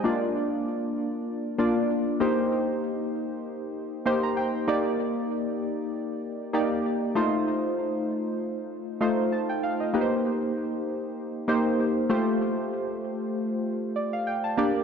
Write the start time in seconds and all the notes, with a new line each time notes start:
Already playing: D#5
0.04 A#3 D4 F4 D5
1.58 A#3 D4 F4 D5
2.20 A#3 D#4 G4 C5
4.06 A#3 D#4 G4 C5 C6
4.23 A#5
4.37 G5
4.67 A#3 D#4 G4 D5
6.53 A#3 D#4 G4 D5
7.15 A3 D#4 F4 C5
9.01 A3 D#4 F4 C5
9.32 A5
9.49 G5
9.63 F5
9.80 D#5
9.93 A#3 D#4 G4 B4
10.01 C5
11.48 A#3 D#4 G4 C5
12.09 A3 F4 G4 C5
13.96 D5
14.13 F5
14.27 G5
14.44 A5
14.57 A#3 D4 G4 D5